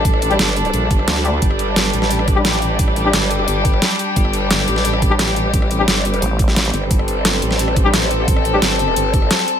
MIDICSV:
0, 0, Header, 1, 6, 480
1, 0, Start_track
1, 0, Tempo, 342857
1, 70, Time_signature, 4, 2, 24, 8
1, 13434, End_track
2, 0, Start_track
2, 0, Title_t, "String section"
2, 0, Program_c, 0, 48
2, 0, Note_on_c, 0, 55, 84
2, 0, Note_on_c, 0, 62, 78
2, 0, Note_on_c, 0, 69, 94
2, 1959, Note_off_c, 0, 69, 0
2, 1990, Note_on_c, 0, 67, 94
2, 7694, Note_off_c, 0, 62, 0
2, 7750, Note_on_c, 0, 60, 76
2, 9638, Note_off_c, 0, 67, 0
2, 9670, Note_on_c, 0, 69, 93
2, 13434, Note_off_c, 0, 55, 0
2, 13434, Note_off_c, 0, 60, 0
2, 13434, Note_off_c, 0, 69, 0
2, 13434, End_track
3, 0, Start_track
3, 0, Title_t, "Brass ensemble"
3, 0, Program_c, 1, 61
3, 428, Note_on_c, 1, 55, 90
3, 428, Note_on_c, 1, 62, 82
3, 428, Note_on_c, 1, 67, 103
3, 488, Note_off_c, 1, 55, 0
3, 488, Note_off_c, 1, 62, 0
3, 488, Note_off_c, 1, 67, 0
3, 1748, Note_on_c, 1, 55, 77
3, 1748, Note_on_c, 1, 62, 71
3, 1748, Note_on_c, 1, 67, 85
3, 1808, Note_off_c, 1, 55, 0
3, 1808, Note_off_c, 1, 62, 0
3, 1808, Note_off_c, 1, 67, 0
3, 3308, Note_on_c, 1, 55, 96
3, 3308, Note_on_c, 1, 62, 88
3, 3308, Note_on_c, 1, 67, 107
3, 3368, Note_off_c, 1, 55, 0
3, 3368, Note_off_c, 1, 62, 0
3, 3368, Note_off_c, 1, 67, 0
3, 4268, Note_on_c, 1, 55, 91
3, 4268, Note_on_c, 1, 62, 84
3, 4268, Note_on_c, 1, 67, 103
3, 4328, Note_off_c, 1, 55, 0
3, 4328, Note_off_c, 1, 62, 0
3, 4328, Note_off_c, 1, 67, 0
3, 7149, Note_on_c, 1, 55, 99
3, 7149, Note_on_c, 1, 62, 90
3, 7149, Note_on_c, 1, 67, 105
3, 7209, Note_off_c, 1, 55, 0
3, 7209, Note_off_c, 1, 62, 0
3, 7209, Note_off_c, 1, 67, 0
3, 8110, Note_on_c, 1, 55, 91
3, 8110, Note_on_c, 1, 62, 83
3, 8110, Note_on_c, 1, 67, 100
3, 8169, Note_off_c, 1, 55, 0
3, 8169, Note_off_c, 1, 62, 0
3, 8169, Note_off_c, 1, 67, 0
3, 10990, Note_on_c, 1, 55, 98
3, 10990, Note_on_c, 1, 62, 87
3, 10990, Note_on_c, 1, 67, 110
3, 11049, Note_off_c, 1, 55, 0
3, 11049, Note_off_c, 1, 62, 0
3, 11049, Note_off_c, 1, 67, 0
3, 11950, Note_on_c, 1, 55, 94
3, 11950, Note_on_c, 1, 62, 84
3, 11950, Note_on_c, 1, 67, 100
3, 12009, Note_off_c, 1, 55, 0
3, 12009, Note_off_c, 1, 62, 0
3, 12009, Note_off_c, 1, 67, 0
3, 13434, End_track
4, 0, Start_track
4, 0, Title_t, "Wobble bass"
4, 0, Program_c, 2, 39
4, 1509, Note_on_c, 2, 38, 102
4, 1970, Note_off_c, 2, 38, 0
4, 8711, Note_on_c, 2, 33, 96
4, 9411, Note_off_c, 2, 33, 0
4, 13434, End_track
5, 0, Start_track
5, 0, Title_t, "Wobble bass"
5, 0, Program_c, 3, 39
5, 69, Note_on_c, 3, 33, 93
5, 530, Note_off_c, 3, 33, 0
5, 549, Note_on_c, 3, 31, 98
5, 1010, Note_off_c, 3, 31, 0
5, 1028, Note_on_c, 3, 34, 98
5, 1250, Note_off_c, 3, 34, 0
5, 1268, Note_on_c, 3, 31, 100
5, 1490, Note_off_c, 3, 31, 0
5, 1989, Note_on_c, 3, 31, 97
5, 2690, Note_off_c, 3, 31, 0
5, 2708, Note_on_c, 3, 33, 99
5, 3890, Note_off_c, 3, 33, 0
5, 3908, Note_on_c, 3, 33, 99
5, 4370, Note_off_c, 3, 33, 0
5, 4388, Note_on_c, 3, 31, 94
5, 4850, Note_off_c, 3, 31, 0
5, 4869, Note_on_c, 3, 31, 101
5, 5330, Note_off_c, 3, 31, 0
5, 5829, Note_on_c, 3, 31, 94
5, 6530, Note_off_c, 3, 31, 0
5, 6549, Note_on_c, 3, 33, 99
5, 7730, Note_off_c, 3, 33, 0
5, 7749, Note_on_c, 3, 33, 101
5, 8210, Note_off_c, 3, 33, 0
5, 8228, Note_on_c, 3, 31, 94
5, 8690, Note_off_c, 3, 31, 0
5, 9429, Note_on_c, 3, 31, 96
5, 9650, Note_off_c, 3, 31, 0
5, 9670, Note_on_c, 3, 31, 98
5, 10370, Note_off_c, 3, 31, 0
5, 10389, Note_on_c, 3, 33, 99
5, 11570, Note_off_c, 3, 33, 0
5, 11590, Note_on_c, 3, 33, 97
5, 12050, Note_off_c, 3, 33, 0
5, 12069, Note_on_c, 3, 31, 100
5, 12530, Note_off_c, 3, 31, 0
5, 12549, Note_on_c, 3, 31, 99
5, 13010, Note_off_c, 3, 31, 0
5, 13434, End_track
6, 0, Start_track
6, 0, Title_t, "Drums"
6, 69, Note_on_c, 9, 36, 127
6, 69, Note_on_c, 9, 42, 88
6, 189, Note_on_c, 9, 37, 48
6, 209, Note_off_c, 9, 36, 0
6, 209, Note_off_c, 9, 42, 0
6, 309, Note_on_c, 9, 42, 63
6, 329, Note_off_c, 9, 37, 0
6, 429, Note_off_c, 9, 42, 0
6, 429, Note_on_c, 9, 42, 36
6, 550, Note_off_c, 9, 42, 0
6, 550, Note_on_c, 9, 38, 127
6, 550, Note_on_c, 9, 42, 90
6, 690, Note_off_c, 9, 38, 0
6, 690, Note_off_c, 9, 42, 0
6, 790, Note_on_c, 9, 42, 65
6, 909, Note_off_c, 9, 42, 0
6, 909, Note_on_c, 9, 37, 34
6, 909, Note_on_c, 9, 42, 34
6, 1029, Note_off_c, 9, 42, 0
6, 1029, Note_on_c, 9, 42, 86
6, 1049, Note_off_c, 9, 37, 0
6, 1169, Note_off_c, 9, 42, 0
6, 1269, Note_on_c, 9, 36, 113
6, 1269, Note_on_c, 9, 42, 63
6, 1389, Note_on_c, 9, 37, 37
6, 1409, Note_off_c, 9, 36, 0
6, 1409, Note_off_c, 9, 42, 0
6, 1508, Note_on_c, 9, 38, 127
6, 1508, Note_on_c, 9, 42, 88
6, 1529, Note_off_c, 9, 37, 0
6, 1628, Note_off_c, 9, 42, 0
6, 1628, Note_on_c, 9, 42, 36
6, 1648, Note_off_c, 9, 38, 0
6, 1748, Note_off_c, 9, 42, 0
6, 1748, Note_on_c, 9, 42, 64
6, 1888, Note_off_c, 9, 42, 0
6, 1988, Note_on_c, 9, 36, 123
6, 1988, Note_on_c, 9, 42, 85
6, 2107, Note_on_c, 9, 37, 47
6, 2128, Note_off_c, 9, 36, 0
6, 2128, Note_off_c, 9, 42, 0
6, 2228, Note_on_c, 9, 42, 62
6, 2247, Note_off_c, 9, 37, 0
6, 2368, Note_off_c, 9, 42, 0
6, 2468, Note_on_c, 9, 38, 120
6, 2468, Note_on_c, 9, 42, 95
6, 2608, Note_off_c, 9, 38, 0
6, 2608, Note_off_c, 9, 42, 0
6, 2708, Note_on_c, 9, 42, 66
6, 2828, Note_on_c, 9, 37, 34
6, 2828, Note_on_c, 9, 38, 38
6, 2848, Note_off_c, 9, 42, 0
6, 2948, Note_on_c, 9, 42, 88
6, 2968, Note_off_c, 9, 37, 0
6, 2968, Note_off_c, 9, 38, 0
6, 3068, Note_on_c, 9, 37, 55
6, 3088, Note_off_c, 9, 42, 0
6, 3188, Note_on_c, 9, 36, 109
6, 3188, Note_on_c, 9, 42, 63
6, 3208, Note_off_c, 9, 37, 0
6, 3328, Note_off_c, 9, 36, 0
6, 3328, Note_off_c, 9, 42, 0
6, 3427, Note_on_c, 9, 38, 117
6, 3427, Note_on_c, 9, 42, 88
6, 3547, Note_off_c, 9, 42, 0
6, 3547, Note_on_c, 9, 42, 37
6, 3567, Note_off_c, 9, 38, 0
6, 3667, Note_off_c, 9, 42, 0
6, 3667, Note_on_c, 9, 42, 66
6, 3807, Note_off_c, 9, 42, 0
6, 3907, Note_on_c, 9, 42, 91
6, 3908, Note_on_c, 9, 36, 119
6, 4028, Note_on_c, 9, 37, 46
6, 4047, Note_off_c, 9, 42, 0
6, 4048, Note_off_c, 9, 36, 0
6, 4148, Note_on_c, 9, 42, 67
6, 4168, Note_off_c, 9, 37, 0
6, 4288, Note_off_c, 9, 42, 0
6, 4388, Note_on_c, 9, 38, 118
6, 4388, Note_on_c, 9, 42, 96
6, 4528, Note_off_c, 9, 38, 0
6, 4528, Note_off_c, 9, 42, 0
6, 4628, Note_on_c, 9, 42, 66
6, 4748, Note_on_c, 9, 37, 34
6, 4768, Note_off_c, 9, 42, 0
6, 4868, Note_on_c, 9, 42, 92
6, 4888, Note_off_c, 9, 37, 0
6, 5008, Note_off_c, 9, 42, 0
6, 5108, Note_on_c, 9, 36, 103
6, 5109, Note_on_c, 9, 42, 68
6, 5229, Note_on_c, 9, 37, 36
6, 5248, Note_off_c, 9, 36, 0
6, 5249, Note_off_c, 9, 42, 0
6, 5348, Note_on_c, 9, 38, 115
6, 5348, Note_on_c, 9, 42, 94
6, 5369, Note_off_c, 9, 37, 0
6, 5469, Note_off_c, 9, 42, 0
6, 5469, Note_on_c, 9, 42, 38
6, 5488, Note_off_c, 9, 38, 0
6, 5589, Note_off_c, 9, 42, 0
6, 5589, Note_on_c, 9, 42, 68
6, 5729, Note_off_c, 9, 42, 0
6, 5829, Note_on_c, 9, 36, 118
6, 5829, Note_on_c, 9, 42, 91
6, 5949, Note_on_c, 9, 37, 49
6, 5969, Note_off_c, 9, 36, 0
6, 5969, Note_off_c, 9, 42, 0
6, 6068, Note_on_c, 9, 42, 67
6, 6089, Note_off_c, 9, 37, 0
6, 6208, Note_off_c, 9, 42, 0
6, 6309, Note_on_c, 9, 38, 117
6, 6309, Note_on_c, 9, 42, 96
6, 6449, Note_off_c, 9, 38, 0
6, 6449, Note_off_c, 9, 42, 0
6, 6549, Note_on_c, 9, 42, 73
6, 6669, Note_on_c, 9, 37, 34
6, 6669, Note_on_c, 9, 38, 35
6, 6689, Note_off_c, 9, 42, 0
6, 6788, Note_on_c, 9, 42, 96
6, 6809, Note_off_c, 9, 37, 0
6, 6809, Note_off_c, 9, 38, 0
6, 6909, Note_on_c, 9, 37, 57
6, 6928, Note_off_c, 9, 42, 0
6, 7029, Note_on_c, 9, 36, 104
6, 7030, Note_on_c, 9, 42, 72
6, 7049, Note_off_c, 9, 37, 0
6, 7169, Note_off_c, 9, 36, 0
6, 7170, Note_off_c, 9, 42, 0
6, 7269, Note_on_c, 9, 38, 115
6, 7269, Note_on_c, 9, 42, 101
6, 7390, Note_off_c, 9, 42, 0
6, 7390, Note_on_c, 9, 42, 40
6, 7409, Note_off_c, 9, 38, 0
6, 7510, Note_off_c, 9, 42, 0
6, 7510, Note_on_c, 9, 42, 70
6, 7650, Note_off_c, 9, 42, 0
6, 7749, Note_on_c, 9, 36, 121
6, 7750, Note_on_c, 9, 42, 95
6, 7870, Note_on_c, 9, 37, 49
6, 7889, Note_off_c, 9, 36, 0
6, 7890, Note_off_c, 9, 42, 0
6, 7990, Note_on_c, 9, 42, 70
6, 8010, Note_off_c, 9, 37, 0
6, 8130, Note_off_c, 9, 42, 0
6, 8231, Note_on_c, 9, 38, 117
6, 8231, Note_on_c, 9, 42, 99
6, 8371, Note_off_c, 9, 38, 0
6, 8371, Note_off_c, 9, 42, 0
6, 8470, Note_on_c, 9, 42, 72
6, 8591, Note_off_c, 9, 42, 0
6, 8591, Note_on_c, 9, 37, 37
6, 8591, Note_on_c, 9, 42, 39
6, 8710, Note_off_c, 9, 42, 0
6, 8710, Note_on_c, 9, 42, 101
6, 8731, Note_off_c, 9, 37, 0
6, 8850, Note_off_c, 9, 42, 0
6, 8950, Note_on_c, 9, 36, 105
6, 8951, Note_on_c, 9, 42, 68
6, 9070, Note_on_c, 9, 37, 38
6, 9070, Note_on_c, 9, 38, 37
6, 9090, Note_off_c, 9, 36, 0
6, 9091, Note_off_c, 9, 42, 0
6, 9190, Note_off_c, 9, 38, 0
6, 9190, Note_on_c, 9, 38, 116
6, 9190, Note_on_c, 9, 42, 99
6, 9210, Note_off_c, 9, 37, 0
6, 9310, Note_off_c, 9, 42, 0
6, 9310, Note_on_c, 9, 42, 41
6, 9330, Note_off_c, 9, 38, 0
6, 9430, Note_off_c, 9, 42, 0
6, 9430, Note_on_c, 9, 37, 34
6, 9430, Note_on_c, 9, 42, 69
6, 9570, Note_off_c, 9, 37, 0
6, 9570, Note_off_c, 9, 42, 0
6, 9670, Note_on_c, 9, 36, 120
6, 9670, Note_on_c, 9, 42, 91
6, 9790, Note_on_c, 9, 37, 50
6, 9810, Note_off_c, 9, 36, 0
6, 9810, Note_off_c, 9, 42, 0
6, 9911, Note_on_c, 9, 42, 68
6, 9930, Note_off_c, 9, 37, 0
6, 10051, Note_off_c, 9, 42, 0
6, 10150, Note_on_c, 9, 38, 121
6, 10150, Note_on_c, 9, 42, 100
6, 10290, Note_off_c, 9, 38, 0
6, 10290, Note_off_c, 9, 42, 0
6, 10390, Note_on_c, 9, 42, 72
6, 10510, Note_on_c, 9, 37, 37
6, 10510, Note_on_c, 9, 38, 38
6, 10530, Note_off_c, 9, 42, 0
6, 10630, Note_on_c, 9, 42, 96
6, 10650, Note_off_c, 9, 37, 0
6, 10650, Note_off_c, 9, 38, 0
6, 10750, Note_on_c, 9, 37, 62
6, 10770, Note_off_c, 9, 42, 0
6, 10870, Note_on_c, 9, 36, 111
6, 10871, Note_on_c, 9, 42, 69
6, 10890, Note_off_c, 9, 37, 0
6, 11010, Note_off_c, 9, 36, 0
6, 11011, Note_off_c, 9, 42, 0
6, 11110, Note_on_c, 9, 38, 117
6, 11110, Note_on_c, 9, 42, 97
6, 11230, Note_off_c, 9, 42, 0
6, 11230, Note_on_c, 9, 42, 41
6, 11250, Note_off_c, 9, 38, 0
6, 11350, Note_off_c, 9, 42, 0
6, 11350, Note_on_c, 9, 42, 68
6, 11490, Note_off_c, 9, 42, 0
6, 11590, Note_on_c, 9, 36, 124
6, 11590, Note_on_c, 9, 42, 92
6, 11711, Note_on_c, 9, 37, 51
6, 11730, Note_off_c, 9, 36, 0
6, 11730, Note_off_c, 9, 42, 0
6, 11831, Note_on_c, 9, 42, 71
6, 11851, Note_off_c, 9, 37, 0
6, 11971, Note_off_c, 9, 42, 0
6, 12070, Note_on_c, 9, 38, 126
6, 12070, Note_on_c, 9, 42, 98
6, 12210, Note_off_c, 9, 38, 0
6, 12210, Note_off_c, 9, 42, 0
6, 12310, Note_on_c, 9, 42, 70
6, 12430, Note_on_c, 9, 37, 37
6, 12450, Note_off_c, 9, 42, 0
6, 12550, Note_on_c, 9, 42, 96
6, 12570, Note_off_c, 9, 37, 0
6, 12690, Note_off_c, 9, 42, 0
6, 12790, Note_on_c, 9, 36, 112
6, 12791, Note_on_c, 9, 42, 67
6, 12911, Note_on_c, 9, 37, 40
6, 12930, Note_off_c, 9, 36, 0
6, 12931, Note_off_c, 9, 42, 0
6, 13030, Note_on_c, 9, 38, 127
6, 13030, Note_on_c, 9, 42, 96
6, 13051, Note_off_c, 9, 37, 0
6, 13150, Note_off_c, 9, 42, 0
6, 13150, Note_on_c, 9, 42, 38
6, 13170, Note_off_c, 9, 38, 0
6, 13270, Note_off_c, 9, 42, 0
6, 13270, Note_on_c, 9, 42, 70
6, 13410, Note_off_c, 9, 42, 0
6, 13434, End_track
0, 0, End_of_file